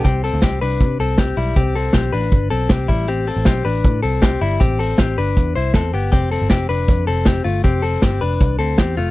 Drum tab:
HH |xoxoxoxo|xoxoxoxo|xoxoxoxo|xoxoxoxo|
SD |--o---o-|--o---o-|--o---o-|--o---o-|
BD |o-o-o-o-|o-o-o-oo|--o-o-o-|o-o-o-o-|

HH |xoxoxoxo|xoxoxoxo|
SD |--o---o-|--o---o-|
BD |o-o-o-o-|o-o-o-o-|